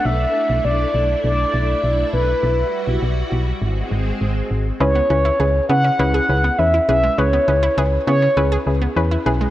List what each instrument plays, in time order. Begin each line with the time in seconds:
Already playing: string machine A3 D4
0.05 fm bass B1, string machine E4, soft synth lead E5
0.50 fm bass B1
0.65 fm bass B1, soft synth lead D5
0.94 fm bass B1
1.24 fm bass B1, soft synth lead D5
1.54 fm bass B1
1.83 fm bass B1
2.13 fm bass B1, soft synth lead B4
2.43 fm bass B1, string machine G3 F#4
2.88 fm bass B1
3.02 fm bass B1
3.32 fm bass B1
3.62 fm bass G#1, string machine G#3 C4
3.91 fm bass G#1
4.21 fm bass G#1
4.51 fm bass G#1
4.81 fm bass C#2, synth arpeggio sound G#3, synth pluck C#4 E4 G#4 B4, soft synth lead C#5
4.96 synth arpeggio sound B3
5.10 fm bass C#2, synth arpeggio sound C#4, synth pluck C#4 E4 G#4 B4
5.25 synth arpeggio sound E4
5.40 fm bass C#2, synth pluck C#4 E4 G#4 B4, synth arpeggio sound G#4
5.69 fm bass C#3, synth arpeggio sound B3, synth pluck C#4 E4 G#4 B4, soft synth lead F#5
5.85 synth arpeggio sound C#4
5.99 fm bass C#2, synth pluck C#4 E4 G#4 B4, synth arpeggio sound E4
6.14 synth arpeggio sound G#4
6.29 fm bass C#2, synth pluck C#4 E4 G#4 B4
6.44 synth arpeggio sound B3
6.58 fm bass E2, synth pluck C#4 E4 G#4 B4, soft synth lead E5
6.74 synth arpeggio sound E4
6.88 fm bass B1, synth pluck C#4 E4 G#4 B4, synth arpeggio sound G#4, soft synth lead E5
7.03 synth arpeggio sound G#3
7.18 fm bass C#2, synth arpeggio sound G#3, synth pluck C#4 E4 G#4 B4, soft synth lead C#5
7.33 synth arpeggio sound B3
7.48 fm bass C#2, synth arpeggio sound C#4, synth pluck C#4 E4 G#4 B4
7.63 synth arpeggio sound E4
7.78 fm bass C#2, synth pluck C#4 E4 G#4 B4, synth arpeggio sound G#4
8.07 fm bass C#3, synth arpeggio sound B3, synth pluck C#4 E4 G#4 B4, soft synth lead C#5
8.22 synth arpeggio sound C#4
8.37 fm bass C#2, synth pluck C#4 E4 G#4 B4, synth arpeggio sound E4
8.52 synth arpeggio sound G#4
8.67 fm bass C#2, synth pluck C#4 E4 G#4 B4
8.82 synth arpeggio sound B3
8.96 fm bass E2, synth pluck C#4 E4 G#4 B4
9.11 synth arpeggio sound E4
9.26 fm bass B1, synth pluck C#4 E4 G#4 B4, synth arpeggio sound G#4
9.41 synth arpeggio sound G#3